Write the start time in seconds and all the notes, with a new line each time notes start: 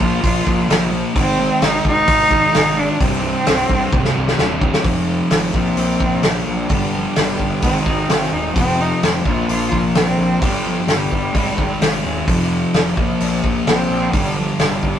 Already playing: F4
0.00 A#1 A#2 F3 A#3, kick
0.21 A#1 A#2 F3 A#3, kick, open hi-hat
0.45 A#1 A#2 F3 A#3, kick
0.68 A#1 A#2 F3 A#3, snare, open hi-hat
0.91 A#2 F3 A#3
1.14 G#1 G#2 D#3 G#3, kick, open hi-hat
1.19 C4
1.38 G#2 D#3 G#3
1.60 G#1 G#2 D#3 G#3, snare, open hi-hat
1.64 D#4
1.84 G#1 G#2 D#3 G#3, kick
1.88 D#4
2.06 G#1 G#2 D#3 G#3, kick, open hi-hat
2.30 G#1 G#2 D#3 G#3, kick
2.52 G#1 G#2 D#3 G#3, snare, open hi-hat
2.76 G#2 D#3 G#3 D4
2.99 C1 C2 G2 C3 C4, kick, open hi-hat
3.22 C2 G2 C3
3.45 C1 C2 G2 C3, snare, open hi-hat
3.68 C1 C2 G2 C3, kick
3.91 C1 C2 G2 C3, kick, high tom
4.05 snare
4.14 C1 C2 G2 C3
4.28 snare
4.38 D#1 C2 G2 C3, snare
4.60 C2 G2 C3, kick
4.74 snare
4.83 F1 F2 C3 F3 G#3 C4 F4, kick, open hi-hat
5.06 F3 G#3 C4 F4
5.30 G#1 F2 C3 F3 G#3 C4 F4, snare, open hi-hat
5.52 A#1 A#2 F3 A#3 C4 D4 F4 A#4, kick
5.76 A#1 A#3 D4 F4 A#4, open hi-hat
6.00 A#1 A#3 D4 F4 A#4, kick
6.23 A#1 A#2 F3 A#3 D4 F4 A#4, snare, open hi-hat
6.46 A#1 G3 A#3 D4 F4 A#4
6.68 G1 G2 D3 G3 B3 D4 G4, kick, open hi-hat
6.94 F3 G3 B3 D4 G4
7.16 G1 G2 D3 G3 B3 D4, snare, open hi-hat
7.20 G4
7.39 G1 B3 D4 G4, kick
7.44 G3
7.61 G#1 G#2 D#3 G#3 C4 D#4, kick, open hi-hat
7.65 G#4
7.86 G#1 G#3 C4 D#4 G#4, kick
8.08 G#1 G#2 D#3 G#3 C4 D#4 G#4, snare, open hi-hat
8.22 snare
8.32 D#1 G#3 C4 D#4 G#4
8.52 F1 F2 C3 F3, kick, open hi-hat
8.57 F3 G#3 C4 F4
8.78 F3 G#3 C4 D#4 F4
9.01 F1 F2 C3 F3 G#3 C4 F4, snare, open hi-hat
9.24 A#1 A#2 F3 A#3 D4 F4 A#4, kick
9.48 A#1 A#3 D4 F4 A#4, open hi-hat
9.71 A#1 A#3 D4 F4 A#4, kick
9.94 A#1 A#2 F3 A#3 C4 D4 F4 A#4, snare, open hi-hat
10.18 A#1 A#3 D4 F4 A#4
10.40 G1 G2 D3 G3 B3 D4 G4, kick, open hi-hat
10.44 G3
10.64 F3 G3 B3 D4 G4
10.86 G1 G2 D3 G3 B3 D4 G4, snare, open hi-hat
11.10 G1 G3 B3 D4 G4, kick
11.33 G#1 G#2 D#3 G#3 C4 D#4, kick, open hi-hat
11.58 G#1 C4 D#4, kick
11.80 G#1 G#2 D#3 C4 D#4, snare, open hi-hat
12.03 D#1 G#3 C4 D#4 G#4
12.26 F1 F2 C3 F3, kick, open hi-hat
12.74 F1, snare, open hi-hat
12.96 A#1 A#2 F3 A#3, kick
13.20 A#1, open hi-hat
13.44 A#1, kick
13.67 A#1 C4, snare, open hi-hat
13.90 A#1
14.12 G1 G2 D3 G3, kick, open hi-hat
14.36 F3
14.59 G1 G3, snare, open hi-hat
14.83 G1, kick